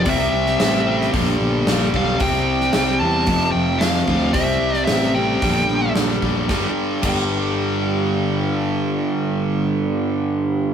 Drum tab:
CC |----------------|----------------|----------------|----x-----------|
HH |o---o---o---o---|o---o---o---o---|o---o---o---o---|----------------|
SD |---oo--o----o---|---oo-------o---|---oo-------o---|o---------------|
BD |o-------o-----o-|o-------o-----o-|o-------o-----o-|o---o-----------|

CC |----------------|
HH |----------------|
SD |----------------|
BD |----------------|